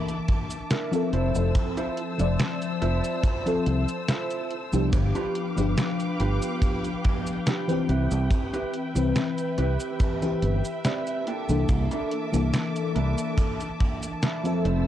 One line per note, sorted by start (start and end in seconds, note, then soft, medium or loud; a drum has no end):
0.00 0.87 E3 medium
0.00 0.87 A#3 medium
0.00 1.09 A#3 medium
0.00 0.88 D4 medium
0.00 1.09 E5 medium
0.00 0.88 A5 medium
0.00 1.10 A5 medium
0.00 1.10 D6 loud
0.09 closed hi-hat soft
0.09 cabasa soft
0.28 kick loud
0.28 closed hi-hat medium
0.50 closed hi-hat soft
0.50 cabasa medium
0.71 1.12 D4 medium
0.71 1.12 E4 medium
0.71 1.12 A4 medium
0.71 1.13 A#4 loud
0.71 snare loud
0.71 closed hi-hat medium
0.71 cabasa soft
0.91 2.13 F3 medium
0.91 2.14 C4 medium
0.91 2.15 A4 loud
0.91 2.14 E5 medium
0.91 closed hi-hat soft
0.91 cabasa soft
1.13 1.31 F1 medium
1.13 1.64 E4 medium
1.13 1.64 F4 medium
1.13 1.64 A4 medium
1.13 4.89 C5 medium
1.13 1.64 C5 loud
1.13 4.90 A5 medium
1.13 4.89 E6 medium
1.13 closed hi-hat soft
1.35 1.51 F1 medium
1.35 cabasa medium
1.55 kick loud
1.55 closed hi-hat medium
1.55 cabasa soft
1.77 1.97 E4 loud
1.77 1.97 F4 loud
1.77 1.97 A4 loud
1.77 1.97 C5 loud
1.77 closed hi-hat soft
1.77 cabasa soft
1.97 closed hi-hat medium
2.18 2.36 F1 medium
2.18 3.40 F3 medium
2.18 3.41 C4 medium
2.18 3.42 D5 medium
2.18 3.41 E5 medium
2.18 muted clean electric guitar stroke medium
2.18 closed hi-hat soft
2.18 cabasa medium
2.39 muted clean electric guitar stroke soft
2.39 snare loud
2.39 closed hi-hat medium
2.39 cabasa soft
2.62 closed hi-hat soft
2.62 cabasa soft
2.81 3.00 F1 medium
2.81 3.46 E4 medium
2.81 3.46 F4 medium
2.81 3.46 A4 medium
2.81 3.46 C5 loud
2.81 closed hi-hat medium
3.04 closed hi-hat soft
3.04 cabasa medium
3.23 kick loud
3.23 closed hi-hat medium
3.23 cabasa soft
3.46 3.83 F3 medium
3.46 3.83 C4 medium
3.46 3.84 A4 loud
3.46 3.83 E5 medium
3.46 closed hi-hat soft
3.46 cabasa soft
3.66 3.85 C2 medium
3.66 closed hi-hat medium
3.88 closed hi-hat soft
3.88 cabasa medium
4.08 4.51 E4 medium
4.08 4.51 F4 medium
4.08 4.51 A4 medium
4.08 4.51 C5 loud
4.08 snare loud
4.08 closed hi-hat medium
4.08 cabasa soft
4.30 closed hi-hat soft
4.30 cabasa soft
4.50 closed hi-hat soft
4.72 4.89 C2 loud
4.72 5.52 F3 medium
4.72 5.52 B3 medium
4.72 5.52 D4 medium
4.72 5.53 G4 medium
4.72 cabasa medium
4.93 5.11 G1 loud
4.93 7.86 B4 medium
4.93 7.86 F5 medium
4.93 11.23 G5 medium
4.93 7.86 D6 loud
4.93 muted clean electric guitar stroke loud
4.93 kick loud
4.93 closed hi-hat medium
4.93 cabasa soft
5.15 5.35 D4 loud
5.15 5.35 F4 loud
5.15 5.35 G4 loud
5.15 5.35 B4 loud
5.15 closed hi-hat soft
5.15 cabasa soft
5.35 closed hi-hat medium
5.56 5.74 G1 medium
5.56 7.63 F3 medium
5.56 7.63 B3 medium
5.56 7.64 D4 medium
5.56 7.64 G4 medium
5.56 muted clean electric guitar stroke medium
5.56 closed hi-hat soft
5.56 cabasa medium
5.78 muted clean electric guitar stroke soft
5.78 snare loud
5.78 closed hi-hat medium
5.78 cabasa soft
6.00 closed hi-hat soft
6.00 cabasa soft
6.20 6.38 G1 medium
6.20 6.85 D4 medium
6.20 6.84 F4 medium
6.20 6.85 G4 medium
6.20 6.85 B4 loud
6.20 closed hi-hat medium
6.42 closed hi-hat soft
6.42 cabasa medium
6.62 kick loud
6.62 closed hi-hat medium
6.62 cabasa soft
6.84 closed hi-hat soft
6.84 cabasa soft
7.04 kick loud
7.04 closed hi-hat medium
7.27 closed hi-hat soft
7.27 cabasa medium
7.46 7.88 D4 medium
7.46 7.89 F4 medium
7.46 7.88 G4 medium
7.46 7.88 B4 loud
7.46 snare loud
7.46 closed hi-hat medium
7.46 cabasa soft
7.67 8.90 E3 medium
7.67 8.91 C4 medium
7.67 8.91 G4 medium
7.67 8.90 B4 medium
7.67 closed hi-hat soft
7.67 cabasa soft
7.88 8.07 C2 medium
7.88 8.40 C4 medium
7.88 8.40 E4 medium
7.88 8.40 G4 medium
7.88 11.23 B4 medium
7.88 8.40 B4 loud
7.88 14.61 E5 medium
7.88 closed hi-hat soft
8.11 8.28 C2 medium
8.11 cabasa soft
8.31 kick loud
8.31 closed hi-hat medium
8.31 cabasa soft
8.53 8.73 C4 loud
8.53 8.73 E4 loud
8.53 8.73 G4 loud
8.53 8.73 B4 loud
8.53 closed hi-hat soft
8.53 cabasa soft
8.74 closed hi-hat medium
8.94 9.12 C2 medium
8.94 10.16 E3 medium
8.94 10.17 C4 medium
8.94 10.18 B4 medium
8.94 muted clean electric guitar stroke medium
8.94 closed hi-hat soft
8.94 cabasa medium
9.16 muted clean electric guitar stroke soft
9.16 snare loud
9.16 closed hi-hat medium
9.16 cabasa soft
9.38 closed hi-hat soft
9.38 cabasa soft
9.58 9.76 C2 medium
9.58 10.23 C4 medium
9.58 10.23 E4 medium
9.58 10.23 G4 medium
9.58 10.23 B4 loud
9.58 closed hi-hat medium
9.80 closed hi-hat soft
9.80 cabasa medium
10.00 kick loud
10.00 closed hi-hat medium
10.00 cabasa soft
10.22 10.59 E3 medium
10.22 10.60 C4 medium
10.22 10.60 G4 loud
10.22 10.59 B4 medium
10.22 closed hi-hat soft
10.22 cabasa soft
10.42 10.60 G1 loud
10.42 closed hi-hat medium
10.65 closed hi-hat soft
10.65 cabasa medium
10.85 11.27 C4 medium
10.85 11.26 E4 medium
10.85 11.27 G4 medium
10.85 11.27 B4 loud
10.85 11.05 D5 medium
10.85 snare loud
10.85 closed hi-hat medium
10.85 cabasa soft
11.07 11.26 E5 medium
11.07 closed hi-hat soft
11.07 cabasa soft
11.27 11.78 A#3 loud
11.27 14.62 A#3 medium
11.27 11.78 D4 medium
11.27 11.78 E4 medium
11.27 11.78 A4 loud
11.27 11.66 G5 medium
11.27 14.87 A5 medium
11.27 14.62 D6 medium
11.27 closed hi-hat soft
11.49 11.65 C2 loud
11.49 12.28 E3 medium
11.49 12.28 A#3 medium
11.49 12.29 D4 medium
11.49 12.29 A4 medium
11.49 cabasa medium
11.69 11.87 C2 loud
11.69 kick loud
11.69 closed hi-hat medium
11.69 cabasa soft
11.91 12.11 A#3 loud
11.91 12.11 D4 loud
11.91 12.11 E4 loud
11.91 12.11 A4 loud
11.91 closed hi-hat soft
11.91 cabasa soft
12.11 closed hi-hat medium
12.32 12.50 C2 medium
12.32 14.39 E3 medium
12.32 14.39 A#3 medium
12.32 14.40 D4 medium
12.32 14.40 A4 medium
12.32 muted clean electric guitar stroke medium
12.32 closed hi-hat soft
12.32 cabasa medium
12.54 muted clean electric guitar stroke soft
12.54 snare loud
12.54 closed hi-hat medium
12.54 cabasa soft
12.76 closed hi-hat soft
12.76 cabasa soft
12.95 13.14 C2 medium
12.95 13.60 A#3 medium
12.95 13.60 D4 medium
12.95 13.60 E4 medium
12.95 13.61 A4 loud
12.95 closed hi-hat medium
13.18 closed hi-hat soft
13.18 cabasa medium
13.38 kick loud
13.38 closed hi-hat medium
13.38 cabasa soft
13.61 closed hi-hat soft
13.61 cabasa soft
13.80 kick loud
13.80 closed hi-hat medium
14.03 closed hi-hat soft
14.03 cabasa medium
14.23 14.64 A#3 medium
14.23 14.65 D4 medium
14.23 14.64 E4 medium
14.23 14.64 A4 loud
14.23 snare loud
14.23 closed hi-hat medium
14.23 cabasa soft
14.44 14.87 F3 medium
14.44 14.87 C4 medium
14.44 14.87 A4 loud
14.44 14.87 E5 medium
14.44 closed hi-hat soft
14.44 cabasa soft
14.65 14.83 F1 loud
14.65 14.87 C4 loud
14.65 14.87 E4 medium
14.65 14.87 F4 medium
14.65 14.87 A4 loud
14.65 14.87 C5 medium
14.65 14.87 E6 medium
14.65 closed hi-hat soft